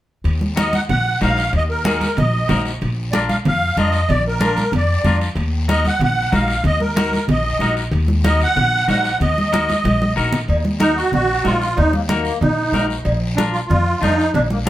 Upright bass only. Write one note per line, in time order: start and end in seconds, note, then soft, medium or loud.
0.24 0.76 D#2 medium
0.89 1.15 A#1 medium
1.21 1.47 A#1 medium
1.53 2.04 D#2 loud
2.17 2.43 A#1 medium
2.49 2.75 A#1 medium
2.82 3.33 A#1 medium
3.46 3.71 F2 medium
3.77 4.02 F2 medium
4.09 4.60 A#1 loud
4.72 4.98 F2 medium
5.04 5.30 F2 medium
5.35 5.87 D#2 loud
5.99 6.26 A#1 medium
6.33 6.58 A#1 medium
6.64 7.15 D#2 loud
7.28 7.54 A#1 medium
7.59 7.85 A#1 medium
7.91 8.43 D#2 loud
8.56 8.82 A#1 medium
8.88 9.14 A#1 medium
9.20 9.71 D#2 loud
9.84 10.10 A#1 medium
10.17 10.42 A#1 medium
10.48 11.00 D#2 loud
11.12 11.38 A#1 medium
11.44 11.70 A#1 medium
11.78 12.29 D#2 loud
12.41 12.67 A#1 medium
12.72 12.98 A#1 medium
13.05 13.57 A#1 loud
13.70 13.95 F2 medium
14.02 14.28 F2 medium
14.34 14.69 A#1 loud